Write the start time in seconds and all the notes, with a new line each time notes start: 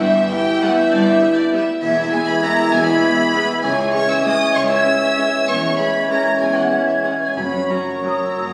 0.00 G1 G2 E3 B3 E4 E5 G6
0.30 G3 B3 G4 G5
0.62 G3 B3 F#4 F#5
0.77 E4 E5
0.91 G1 G2 D4 D5
1.05 E4 E5
1.21 G3 B3
1.36 D4 D5
1.52 G3 B3 E4 E5
1.82 E1 E2 E3 G#3 B3 E4 E5 G#6
2.12 G#3 B3 G#4 G#5
2.28 B4 B5
2.43 G#3 B3 A#4 A#5
2.73 E1 E2 G#4 G#5
2.87 B4 B5
3.04 G#3 B3
3.35 G#3 B3
3.63 C#2 E3 G#3 C#4 G#4 C#5 G#5 G#6
3.93 G#3 C#4 C#5 C#6
4.10 E5 E6
4.25 G#3 C#4 D#5 D#6
4.55 C#2 C#5 C#6
4.70 E5 E6
4.85 G#3 C#4
5.18 G#3 C#4
5.48 E1 E2 E3 G#3 C#4 C#5 C#6 G#6
5.78 G#3 C#4 B4 B5
6.10 G#3 C#4 A#4 A#5
6.40 E1 E2 G#4 G#5
6.55 F#4 F#5
6.71 G#3 C#4
6.87 E4 E5
7.03 G#3 C#4 F#4 F#5
7.21 G#4 G#5
7.36 F#1 F#2 F#3 C#4 B4 C#5 B5
7.70 F#3 C#4 A#4 A#5 C#6
8.05 F#3 C#4 D#6
8.23 E6
8.38 F#1 F#2 D#6